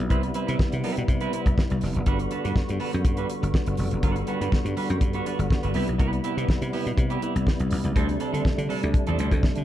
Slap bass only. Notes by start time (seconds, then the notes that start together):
0.00 B1
0.10 C2
0.49 C3
0.60 muted slap bass stroke
0.73 C3
0.98 B2
1.08 C3
1.46 C2
1.71 C2
1.83 F1
1.96 F#1
2.07 G1
2.45 G2
2.56 muted slap bass stroke
2.70 G2
2.94 F#2
3.05 G2
3.43 G1
3.67 G1
3.79 F1
3.92 F#1
4.03 G1
4.41 G2
4.65 G2
4.90 F#2
5.01 G2
5.39 G1
5.64 G1
5.76 C2
5.88 B1
6.00 C2
6.37 C3
6.49 muted slap bass stroke
6.62 C3
6.86 B2
6.98 C3
7.36 C2
7.60 C2
7.72 C2
7.84 C#2
7.96 D2
8.33 D3
8.45 muted slap bass stroke
8.58 D3
8.83 D2
9.08 E2
9.20 D2
9.32 D2
9.57 D3